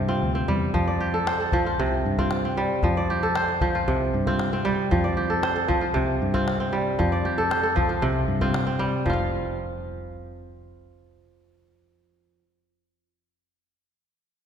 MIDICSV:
0, 0, Header, 1, 4, 480
1, 0, Start_track
1, 0, Key_signature, -1, "major"
1, 0, Tempo, 522648
1, 685, Time_signature, 4, 2, 24, 8
1, 4042, Tempo, 517241
1, 13373, End_track
2, 0, Start_track
2, 0, Title_t, "Kora"
2, 0, Program_c, 0, 46
2, 0, Note_on_c, 0, 48, 87
2, 0, Note_on_c, 0, 67, 71
2, 0, Note_on_c, 0, 69, 55
2, 0, Note_on_c, 0, 72, 69
2, 77, Note_on_c, 0, 60, 80
2, 78, Note_on_c, 0, 65, 68
2, 297, Note_off_c, 0, 67, 0
2, 317, Note_off_c, 0, 60, 0
2, 321, Note_on_c, 0, 60, 62
2, 330, Note_off_c, 0, 72, 0
2, 443, Note_on_c, 0, 55, 84
2, 570, Note_off_c, 0, 69, 0
2, 679, Note_on_c, 0, 53, 78
2, 731, Note_off_c, 0, 48, 0
2, 731, Note_off_c, 0, 55, 0
2, 803, Note_on_c, 0, 74, 62
2, 922, Note_on_c, 0, 67, 67
2, 1045, Note_on_c, 0, 69, 69
2, 1164, Note_on_c, 0, 72, 71
2, 1285, Note_off_c, 0, 69, 0
2, 1289, Note_on_c, 0, 69, 60
2, 1396, Note_off_c, 0, 53, 0
2, 1407, Note_on_c, 0, 53, 83
2, 1469, Note_off_c, 0, 65, 0
2, 1528, Note_on_c, 0, 65, 63
2, 1648, Note_on_c, 0, 48, 89
2, 1693, Note_off_c, 0, 53, 0
2, 1820, Note_off_c, 0, 74, 0
2, 1974, Note_off_c, 0, 60, 0
2, 2004, Note_off_c, 0, 65, 0
2, 2007, Note_on_c, 0, 60, 85
2, 2007, Note_on_c, 0, 65, 69
2, 2219, Note_off_c, 0, 67, 0
2, 2246, Note_off_c, 0, 60, 0
2, 2250, Note_on_c, 0, 60, 63
2, 2255, Note_off_c, 0, 72, 0
2, 2363, Note_on_c, 0, 55, 88
2, 2499, Note_off_c, 0, 69, 0
2, 2604, Note_on_c, 0, 53, 88
2, 2654, Note_off_c, 0, 48, 0
2, 2654, Note_off_c, 0, 55, 0
2, 2729, Note_on_c, 0, 74, 60
2, 2847, Note_on_c, 0, 67, 67
2, 2966, Note_on_c, 0, 69, 79
2, 3082, Note_on_c, 0, 72, 73
2, 3310, Note_off_c, 0, 53, 0
2, 3321, Note_on_c, 0, 53, 79
2, 3398, Note_off_c, 0, 65, 0
2, 3443, Note_on_c, 0, 65, 59
2, 3561, Note_on_c, 0, 48, 88
2, 3611, Note_off_c, 0, 53, 0
2, 3746, Note_off_c, 0, 74, 0
2, 3903, Note_off_c, 0, 60, 0
2, 3918, Note_off_c, 0, 65, 0
2, 3922, Note_on_c, 0, 60, 81
2, 3922, Note_on_c, 0, 65, 76
2, 4145, Note_off_c, 0, 67, 0
2, 4156, Note_off_c, 0, 60, 0
2, 4160, Note_on_c, 0, 60, 66
2, 4174, Note_off_c, 0, 72, 0
2, 4177, Note_off_c, 0, 69, 0
2, 4271, Note_on_c, 0, 55, 93
2, 4516, Note_on_c, 0, 53, 83
2, 4572, Note_off_c, 0, 48, 0
2, 4572, Note_off_c, 0, 55, 0
2, 4635, Note_on_c, 0, 74, 55
2, 4754, Note_on_c, 0, 67, 64
2, 4874, Note_on_c, 0, 69, 79
2, 4994, Note_on_c, 0, 72, 73
2, 5111, Note_off_c, 0, 69, 0
2, 5114, Note_on_c, 0, 69, 58
2, 5221, Note_off_c, 0, 53, 0
2, 5232, Note_on_c, 0, 53, 85
2, 5325, Note_off_c, 0, 65, 0
2, 5351, Note_on_c, 0, 65, 58
2, 5471, Note_on_c, 0, 48, 93
2, 5535, Note_off_c, 0, 53, 0
2, 5663, Note_off_c, 0, 74, 0
2, 5831, Note_off_c, 0, 60, 0
2, 5839, Note_off_c, 0, 65, 0
2, 5840, Note_on_c, 0, 60, 85
2, 5842, Note_on_c, 0, 65, 75
2, 6065, Note_off_c, 0, 67, 0
2, 6079, Note_off_c, 0, 60, 0
2, 6083, Note_on_c, 0, 60, 59
2, 6096, Note_off_c, 0, 72, 0
2, 6199, Note_on_c, 0, 55, 82
2, 6337, Note_off_c, 0, 69, 0
2, 6441, Note_on_c, 0, 53, 77
2, 6495, Note_off_c, 0, 48, 0
2, 6495, Note_off_c, 0, 55, 0
2, 6566, Note_on_c, 0, 74, 59
2, 6687, Note_on_c, 0, 67, 66
2, 6805, Note_on_c, 0, 69, 81
2, 6921, Note_on_c, 0, 72, 62
2, 7037, Note_off_c, 0, 69, 0
2, 7041, Note_on_c, 0, 69, 60
2, 7145, Note_off_c, 0, 53, 0
2, 7156, Note_on_c, 0, 53, 82
2, 7247, Note_off_c, 0, 65, 0
2, 7281, Note_on_c, 0, 65, 57
2, 7402, Note_on_c, 0, 48, 90
2, 7454, Note_off_c, 0, 53, 0
2, 7594, Note_off_c, 0, 74, 0
2, 7754, Note_off_c, 0, 60, 0
2, 7760, Note_off_c, 0, 65, 0
2, 7764, Note_on_c, 0, 60, 77
2, 7764, Note_on_c, 0, 65, 75
2, 7997, Note_off_c, 0, 60, 0
2, 7997, Note_off_c, 0, 67, 0
2, 8000, Note_on_c, 0, 60, 62
2, 8023, Note_off_c, 0, 72, 0
2, 8118, Note_on_c, 0, 55, 87
2, 8264, Note_off_c, 0, 69, 0
2, 8361, Note_on_c, 0, 53, 69
2, 8395, Note_off_c, 0, 65, 0
2, 8399, Note_on_c, 0, 65, 77
2, 8412, Note_off_c, 0, 48, 0
2, 8412, Note_off_c, 0, 55, 0
2, 8433, Note_on_c, 0, 77, 68
2, 9671, Note_off_c, 0, 60, 0
2, 11479, Note_off_c, 0, 53, 0
2, 11517, Note_off_c, 0, 65, 0
2, 11551, Note_off_c, 0, 77, 0
2, 13373, End_track
3, 0, Start_track
3, 0, Title_t, "Fingered electric bass"
3, 0, Program_c, 1, 33
3, 0, Note_on_c, 1, 43, 83
3, 177, Note_off_c, 1, 43, 0
3, 207, Note_on_c, 1, 38, 77
3, 422, Note_off_c, 1, 38, 0
3, 443, Note_on_c, 1, 40, 84
3, 660, Note_off_c, 1, 40, 0
3, 683, Note_on_c, 1, 41, 86
3, 1538, Note_off_c, 1, 41, 0
3, 1648, Note_on_c, 1, 36, 92
3, 1861, Note_off_c, 1, 36, 0
3, 1887, Note_on_c, 1, 43, 92
3, 2526, Note_off_c, 1, 43, 0
3, 2599, Note_on_c, 1, 41, 95
3, 3453, Note_off_c, 1, 41, 0
3, 3560, Note_on_c, 1, 36, 90
3, 3775, Note_off_c, 1, 36, 0
3, 3804, Note_on_c, 1, 43, 95
3, 4444, Note_off_c, 1, 43, 0
3, 4525, Note_on_c, 1, 41, 108
3, 5379, Note_off_c, 1, 41, 0
3, 5488, Note_on_c, 1, 36, 96
3, 5701, Note_off_c, 1, 36, 0
3, 5729, Note_on_c, 1, 43, 96
3, 6367, Note_off_c, 1, 43, 0
3, 6450, Note_on_c, 1, 41, 101
3, 7300, Note_off_c, 1, 41, 0
3, 7405, Note_on_c, 1, 36, 84
3, 7619, Note_off_c, 1, 36, 0
3, 7641, Note_on_c, 1, 43, 86
3, 8281, Note_off_c, 1, 43, 0
3, 8366, Note_on_c, 1, 29, 93
3, 11447, Note_off_c, 1, 29, 0
3, 13373, End_track
4, 0, Start_track
4, 0, Title_t, "Calabash"
4, 680, Note_on_c, 9, 36, 71
4, 771, Note_off_c, 9, 36, 0
4, 1168, Note_on_c, 9, 38, 74
4, 1260, Note_off_c, 9, 38, 0
4, 1399, Note_on_c, 9, 36, 72
4, 1491, Note_off_c, 9, 36, 0
4, 2003, Note_on_c, 9, 36, 57
4, 2095, Note_off_c, 9, 36, 0
4, 2118, Note_on_c, 9, 38, 61
4, 2210, Note_off_c, 9, 38, 0
4, 2597, Note_on_c, 9, 36, 68
4, 2688, Note_off_c, 9, 36, 0
4, 3081, Note_on_c, 9, 38, 73
4, 3173, Note_off_c, 9, 38, 0
4, 3202, Note_on_c, 9, 38, 22
4, 3294, Note_off_c, 9, 38, 0
4, 3317, Note_on_c, 9, 36, 69
4, 3409, Note_off_c, 9, 36, 0
4, 3919, Note_on_c, 9, 36, 53
4, 4011, Note_off_c, 9, 36, 0
4, 4036, Note_on_c, 9, 38, 61
4, 4129, Note_off_c, 9, 38, 0
4, 4524, Note_on_c, 9, 36, 65
4, 4617, Note_off_c, 9, 36, 0
4, 4999, Note_on_c, 9, 38, 69
4, 5092, Note_off_c, 9, 38, 0
4, 5123, Note_on_c, 9, 38, 23
4, 5216, Note_off_c, 9, 38, 0
4, 5243, Note_on_c, 9, 36, 65
4, 5336, Note_off_c, 9, 36, 0
4, 5843, Note_on_c, 9, 36, 54
4, 5935, Note_off_c, 9, 36, 0
4, 5968, Note_on_c, 9, 38, 65
4, 6061, Note_off_c, 9, 38, 0
4, 6452, Note_on_c, 9, 36, 68
4, 6544, Note_off_c, 9, 36, 0
4, 6930, Note_on_c, 9, 38, 69
4, 7022, Note_off_c, 9, 38, 0
4, 7171, Note_on_c, 9, 36, 72
4, 7264, Note_off_c, 9, 36, 0
4, 7290, Note_on_c, 9, 38, 20
4, 7382, Note_off_c, 9, 38, 0
4, 7765, Note_on_c, 9, 36, 59
4, 7858, Note_off_c, 9, 36, 0
4, 7886, Note_on_c, 9, 38, 68
4, 7979, Note_off_c, 9, 38, 0
4, 8366, Note_on_c, 9, 36, 80
4, 8459, Note_off_c, 9, 36, 0
4, 13373, End_track
0, 0, End_of_file